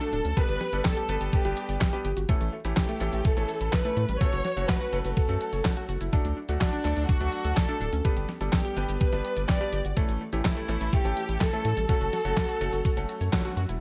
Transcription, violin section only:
0.00 0.37 A4 loud
0.37 0.85 B4 loud
0.85 1.30 A4 loud
1.33 2.05 G4 loud
2.77 3.21 G4 medium
3.25 3.73 A4 loud
3.73 4.21 B4 loud
4.21 4.69 C#5 loud
4.69 5.17 B4 loud
5.17 5.85 A4 medium
6.61 7.06 D4 medium
7.08 7.57 F#4 loud
7.57 8.05 A4 loud
8.53 8.97 G4 medium
9.00 9.45 B4 loud
9.48 9.93 D5 loud
10.45 10.90 E4 loud
10.93 11.41 G4 loud
11.41 11.88 A4 loud
11.89 13.29 A4 loud

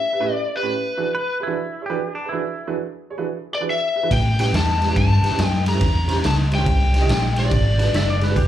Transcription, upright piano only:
0.13 0.17 G4 soft
0.13 0.17 B4 soft
0.20 0.28 A2 medium
0.20 0.28 C#4 medium
0.20 0.28 E4 medium
0.20 0.28 G4 medium
0.20 0.28 B4 medium
0.55 0.59 G4 soft
0.55 0.59 B4 soft
0.62 0.71 A2 medium
0.62 0.71 C#4 medium
0.62 0.71 E4 medium
0.62 0.71 G4 medium
0.62 0.71 B4 medium
0.97 1.06 E3 medium
0.97 1.05 D4 medium
0.97 1.06 F#4 medium
0.97 1.06 G#4 medium
0.97 1.06 B4 medium
1.40 1.44 G#4 medium
1.40 1.44 B4 medium
1.47 1.55 E3 medium
1.47 1.55 D4 medium
1.47 1.55 F#4 medium
1.47 1.56 G#4 medium
1.47 1.55 B4 medium
1.82 1.86 G#4 soft
1.82 1.86 C#5 medium
1.90 1.98 E3 medium
1.90 1.98 D4 medium
1.90 1.98 F#4 medium
1.90 1.98 G#4 medium
1.90 1.98 B4 medium
2.25 2.29 G#4 soft
2.25 2.29 B4 medium
2.32 2.41 E3 medium
2.32 2.41 D4 medium
2.32 2.41 F#4 medium
2.32 2.40 G#4 medium
2.32 2.41 B4 medium
2.67 2.75 E3 medium
2.67 2.76 D4 medium
2.67 2.75 F#4 medium
2.67 2.76 G#4 medium
2.67 2.76 B4 medium
3.10 3.14 G#4 medium
3.10 3.15 C#5 medium
3.18 3.26 E3 medium
3.18 3.26 D4 medium
3.18 3.26 F#4 medium
3.18 3.26 G#4 medium
3.18 3.26 B4 medium
3.52 3.57 G#4 soft
3.52 3.57 B4 soft
3.60 3.69 E3 medium
3.60 3.68 D4 medium
3.60 3.69 F#4 medium
3.60 3.69 G#4 medium
3.60 3.69 B4 medium
3.96 4.00 G#4 soft
3.96 4.00 B4 soft
4.03 4.11 E3 medium
4.03 4.11 D4 medium
4.03 4.11 F#4 medium
4.03 4.11 G#4 medium
4.03 4.11 B4 medium
4.39 4.46 C#4 medium
4.39 4.46 E4 medium
4.39 4.46 G4 medium
4.39 4.46 B4 medium
4.81 4.85 G4 soft
4.81 4.85 B4 soft
4.88 4.96 C#4 medium
4.88 4.96 E4 medium
4.88 4.96 G4 medium
4.88 4.96 B4 medium
5.23 5.27 G4 soft
5.23 5.27 B4 soft
5.31 5.39 C#4 medium
5.31 5.39 E4 medium
5.31 5.39 G4 medium
5.31 5.39 B4 medium
5.66 5.70 G4 soft
5.66 5.70 A4 soft
5.73 5.81 C#4 medium
5.73 5.81 E4 medium
5.73 5.81 G4 medium
5.73 5.81 B4 medium
6.08 6.16 C#4 medium
6.08 6.16 E4 medium
6.08 6.16 G4 medium
6.08 6.16 C5 medium
6.50 6.54 G4 soft
6.50 6.55 C5 soft
6.59 6.66 C#4 medium
6.59 6.67 E4 medium
6.59 6.66 G4 medium
6.59 6.66 C5 medium
6.92 6.97 G4 soft
6.92 6.97 C5 soft
7.01 7.09 C#4 medium
7.01 7.09 E4 medium
7.01 7.08 G4 medium
7.01 7.09 D#5 medium
7.37 7.40 G4 soft
7.37 7.40 C5 soft
7.44 7.52 C#4 medium
7.44 7.52 E4 medium
7.44 7.52 G4 medium
7.44 7.52 C5 medium
7.78 7.86 D4 medium
7.78 7.86 F#4 medium
7.78 7.86 G#4 medium
7.78 7.86 B4 medium
8.21 8.25 G#4 medium
8.21 8.25 D5 medium
8.29 8.37 D4 medium
8.29 8.37 F#4 medium
8.29 8.37 G#4 medium
8.29 8.36 B4 medium

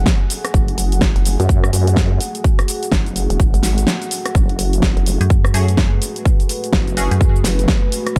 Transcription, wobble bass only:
0.54 0.76 F#1 loud
0.78 1.14 F#1 loud
1.16 1.37 F#1 loud
1.40 1.72 F#2 medium
1.73 2.19 F#2 loud
2.92 3.28 F#1 loud
3.30 3.38 E1 loud
3.40 3.52 F#1 loud
3.54 3.86 G#1 loud
4.35 4.57 F#1 loud
4.59 4.95 F#1 loud
4.97 5.18 F#1 medium
6.73 7.09 F#1 loud
7.44 7.67 F#1 loud
8.16 8.19 F#1 loud

